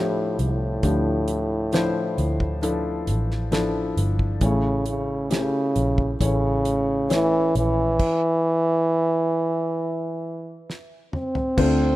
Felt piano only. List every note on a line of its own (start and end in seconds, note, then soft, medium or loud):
0.00 0.83 F3 medium
0.00 0.83 D4 medium
0.00 0.83 E4 medium
0.00 4.43 F4 medium
0.00 0.79 G4 medium
0.00 2.63 A4 medium
0.00 1.74 C5 medium
0.83 2.14 D3 soft
0.83 1.68 F3 medium
0.83 1.68 D4 medium
0.83 1.68 E4 soft
0.83 1.69 G4 medium
1.73 2.58 F3 medium
1.73 2.58 D4 medium
1.73 2.58 E4 medium
1.73 2.58 C5 medium
2.62 3.47 F3 medium
2.62 3.47 D4 medium
2.62 3.48 E4 medium
2.62 3.48 A4 medium
3.52 4.37 F3 medium
3.52 4.37 D4 medium
3.52 4.37 E4 medium
3.52 4.37 A4 medium
4.42 5.72 A2 medium
4.42 5.27 A3 medium
4.42 5.27 C#4 medium
4.42 5.27 E4 medium
4.42 5.27 C#5 medium
5.30 6.16 A3 medium
5.30 6.16 C#4 medium
5.30 6.16 E4 medium
5.30 6.16 G4 medium
6.20 7.06 A3 medium
6.20 7.06 C#4 medium
6.20 7.06 E4 medium
6.20 7.06 C#5 medium
7.09 7.95 A3 medium
7.09 7.95 C#4 medium
7.09 7.95 E4 medium
7.09 7.95 C#5 medium
11.57 11.96 D3 medium
11.57 11.96 A3 medium
11.57 11.96 C4 medium
11.57 11.96 D4 medium
11.57 11.96 F4 medium
11.57 11.96 C5 medium